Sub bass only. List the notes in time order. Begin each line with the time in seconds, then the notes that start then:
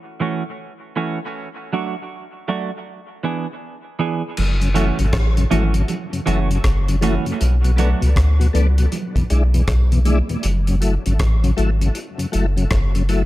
4.39 F#1
5.00 G#1
5.13 A1
5.52 G#1
6.28 F#1
6.65 F#1
7.41 B1
8.02 C#2
8.17 D2
8.55 C#2
9.31 B1
9.68 B1
10.45 F#1
11.07 G#1
11.20 A1
11.59 G#1
12.35 F#1
12.71 F#1